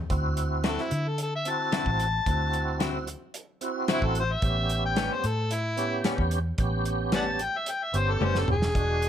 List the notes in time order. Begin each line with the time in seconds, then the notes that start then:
0.10 D2 C4 E4 F#4, kick, closed hi-hat
0.37 closed hi-hat
0.64 D3 C4 E4 F#4, snare, closed hi-hat
0.68 A4
0.78 snare
0.82 E4
0.91 D3, closed hi-hat
1.08 A4
1.18 closed hi-hat
1.23 A4
1.36 E5
1.45 C4 E4 F#4, closed hi-hat
1.50 A5
1.72 D3 C4 E4 F#4, snare, closed hi-hat
1.77 A5
1.86 A1, kick
2.00 closed hi-hat
2.26 D2 C4 E4 F#4, kick, closed hi-hat
2.53 closed hi-hat
2.80 D3 C4 E4 F#4, snare, closed hi-hat
3.07 closed hi-hat
3.34 closed hi-hat
3.61 C4 E4 F#4, closed hi-hat
3.88 D3 C4 E4 F#4, snare, closed hi-hat
3.92 E4
4.02 A1, kick
4.06 A4
4.15 closed hi-hat
4.20 C5
4.32 E5
4.42 A1 B3 C#4 G4, kick, closed hi-hat
4.69 closed hi-hat
4.86 G5
4.96 A2 G3 B3 C#4, snare, closed hi-hat
5.13 C5
5.24 A2 A4, closed hi-hat
5.51 E4, closed hi-hat
5.77 B3 C#4 G4, closed hi-hat
6.04 A2 G3 B3 C#4, snare, closed hi-hat
6.18 E2, kick
6.31 closed hi-hat
6.58 A1 B3 C#4 G4, kick, closed hi-hat
6.85 closed hi-hat
7.12 A2 G3 B3 C#4 D5 F#5 A5, snare, closed hi-hat
7.39 G5, closed hi-hat
7.58 E5
7.66 closed hi-hat
7.71 G5
7.84 E5
7.93 G1 B3 C#4 G4, closed hi-hat
7.97 C5
8.11 A4
8.21 F#1 A2 G3 B3 C#4, high tom
8.25 C5
8.35 A4, snare
8.48 E1 G#4, mid tom
8.62 snare
8.74 E1 G#3 D4 F#4, kick, closed hi-hat
9.02 closed hi-hat